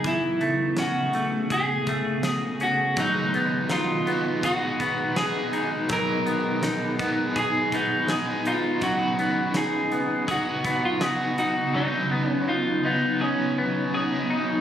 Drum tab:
HH |xxxxxxxx|xxxxxxxx|xxxxxxxx|xxxxxxxx|
SD |--o---o-|--o---o-|--o---o-|--o---o-|
BD |o---oo--|o---oo--|o--ooo--|o---oo--|

HH |--------|
SD |--------|
BD |--------|